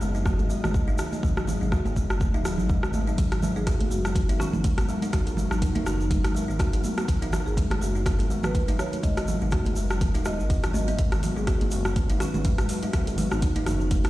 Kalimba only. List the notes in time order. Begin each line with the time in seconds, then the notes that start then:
0.01 G#3
0.15 D#4
0.25 F#4
0.39 G#4
0.50 G#3
0.88 D#4
0.99 D#3
1.23 G#3
1.47 G#3
1.61 D#4
1.72 F#4
1.86 G#4
1.96 G#3
2.34 D#4
2.45 D#3
2.69 G#3
2.94 G#3
3.07 D#4
3.18 G#3
3.42 G#3
3.56 D#4
3.67 F#4
3.80 G#4
3.91 G#3
4.29 D#4
4.40 D#3
4.64 G#3
4.89 G#3
5.02 D#4
5.13 F#4
5.26 G#4
5.37 G#3
5.75 D#4
5.86 D#3
6.10 G#3
6.35 G#3
6.48 D#4
6.59 F#4
6.73 G#4
6.84 G#3
7.22 D#4
7.33 D#3
7.57 G#3
7.82 G#3
7.95 D#4
8.06 F#4
8.19 G#4
8.30 G#3
8.68 D#4
8.79 D#3
9.03 G#3
9.28 G#3
9.42 D#4
9.52 F#4
9.66 G#4
9.76 G#3
10.14 D#4
10.26 G#3
10.50 F#3
10.74 C#4
10.88 B3
10.99 G#3
11.23 G#3
11.36 D#4
11.47 F#4
11.61 G#4
11.72 G#3
12.10 D#4
12.21 D#3
12.45 G#3
12.69 G#3
12.83 D#4
12.94 F#4
13.07 G#4
13.18 G#3
13.56 D#4
13.67 D#3
13.91 G#3